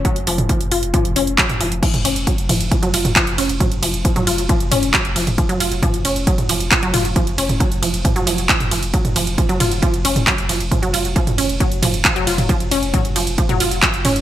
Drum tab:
CC |----------------|x---------------|----------------|----------------|
RD |----------------|--x---x---x---x-|--x---x---x---x-|--x---x---x---x-|
HH |xxoxxxoxxxoxxxox|xxoxxxoxxxoxxxox|xxoxxxoxxxoxxxox|xxoxxxoxxxoxxxox|
CP |------------x---|------------x---|------------x---|------------x---|
T2 |---o----o----o--|-o----o----o----|o----o----o----o|----o----o----o-|
BD |o---o---o---o---|o---o---o---o---|o---o---o---o---|o---o---o---o---|

CC |----------------|----------------|----------------|----------------|
RD |--x---x---x---x-|--x---x---x---x-|--x---x---x---x-|--x---x---x---x-|
HH |xxoxxxoxxxoxxxox|xxoxxxoxxxoxxxox|xxoxxxoxxxoxxxox|xxoxxxoxxxoxxxox|
CP |------------x---|------------x---|------------x---|------------x---|
T2 |---o----o----o--|-o----o----o----|o----o----o----o|----o----o----o-|
BD |o---o---o---o---|o---o---o---o---|o---o---o---o---|o---o---o---o---|